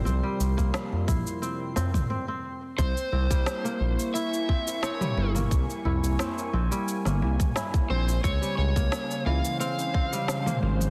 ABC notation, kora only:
X:1
M:4/4
L:1/16
Q:1/4=88
K:none
V:1 name="Kora"
C G, z _B, z2 E2 C z C C C C z2 | C2 C G, z _B, z2 E2 C2 C G, z B, | z2 E2 C2 C G, z _B, z2 E2 C2 | C G, z _B, z2 E,2 C2 C G, z B, z2 |]